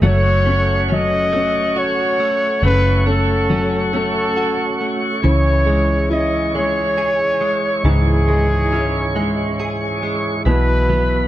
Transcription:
0.00 2.59 F#1 medium
0.00 0.90 F#3 medium
0.00 0.44 A3 medium
0.00 0.88 C#4 medium
0.00 0.11 G#4 medium
0.00 5.21 A4 medium
0.00 10.43 C#5 medium
0.00 5.21 F#5 medium
0.00 10.43 C#6 medium
0.06 0.87 C#5 loud
0.45 1.31 A3 medium
0.45 1.33 C#4 medium
0.88 2.61 F#3 medium
0.88 3.49 C#4 medium
0.93 1.80 D#5 loud
1.32 2.18 A3 medium
1.32 3.04 C#4 medium
1.76 4.35 F#4 medium
1.76 2.64 C#5 loud
2.19 2.62 A3 medium
2.62 5.20 F#1 medium
2.62 5.21 C#3 medium
2.62 3.05 A3 medium
2.62 3.08 B4 loud
3.06 3.92 A3 medium
3.06 3.92 C#4 medium
3.06 3.94 A4 loud
3.50 5.20 F#3 medium
3.50 6.10 C#4 medium
3.93 4.79 A3 medium
3.93 5.20 C#4 soft
3.93 4.88 A4 loud
4.36 5.33 F#4 medium
4.80 5.33 A3 medium
5.22 7.81 C#2 medium
5.22 7.81 C#3 medium
5.22 7.84 E3 medium
5.22 11.28 E4 medium
5.22 10.42 G#4 medium
5.22 6.08 C#5 loud
5.66 6.54 G#3 medium
6.10 8.71 C#4 medium
6.10 7.81 E4 medium
6.10 6.57 D#5 medium
6.55 7.40 G#3 medium
6.55 8.25 G#3 medium
6.55 7.85 C#5 loud
6.98 9.58 G#4 medium
7.41 8.27 G#3 medium
7.84 10.42 C#2 loud
7.84 10.42 G#2 medium
7.84 10.46 E3 medium
7.84 9.56 G#4 loud
8.28 9.14 G#3 medium
8.72 10.55 C#4 medium
8.72 10.43 E4 medium
9.15 10.42 G#3 medium
9.15 10.01 G#3 medium
9.60 10.55 G#4 medium
10.03 10.55 G#3 medium
10.45 11.28 B1 loud
10.45 11.28 B2 medium
10.45 11.28 E3 medium
10.45 11.28 F#4 medium
10.45 11.28 B4 medium
10.45 11.28 B4 loud
10.45 11.28 B5 medium
10.89 11.28 F#3 medium
10.89 11.28 B3 medium

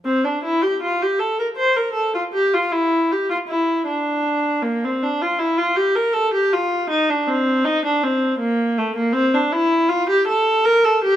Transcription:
0.05 0.23 C4 medium
0.24 0.43 D4 medium
0.44 0.63 E4 medium
0.62 0.82 G4 medium
0.83 1.01 F4 medium
1.02 1.21 G4 medium
1.19 1.39 A4 medium
1.40 1.47 A#4 medium
1.57 1.77 C5 medium
1.77 1.97 A#4 medium
1.93 2.14 A4 medium
2.15 2.23 F4 medium
2.34 2.53 G4 medium
2.54 2.73 F4 medium
2.72 3.11 E4 medium
3.12 3.31 G4 medium
3.30 3.38 F4 medium
3.48 3.87 E4 medium
3.86 4.62 D4 medium
4.63 4.82 A#3 medium
4.84 5.02 C4 medium
5.03 5.21 D4 medium
5.22 5.40 F4 medium
5.39 5.58 E4 medium
5.58 5.77 F4 medium
5.76 5.96 G4 medium
5.96 6.15 A#4 medium
6.13 6.33 A4 medium
6.34 6.52 G4 medium
6.53 6.91 F4 medium
6.90 7.09 D#4 medium
7.10 7.28 D4 medium
7.28 7.65 C4 medium
7.65 7.84 D#4 medium
7.85 8.03 D4 medium
8.03 8.40 C4 medium
8.39 8.76 A#3 medium
8.78 8.96 A3 medium
8.96 9.14 A#3 medium
9.13 9.32 C4 medium
9.34 9.53 D4 medium
9.52 9.90 E4 medium
9.89 10.08 F4 medium
10.09 10.27 G4 medium
10.28 10.64 A4 medium
10.65 10.84 A#4 loud
10.85 11.03 A4 medium
11.04 11.16 G4 medium

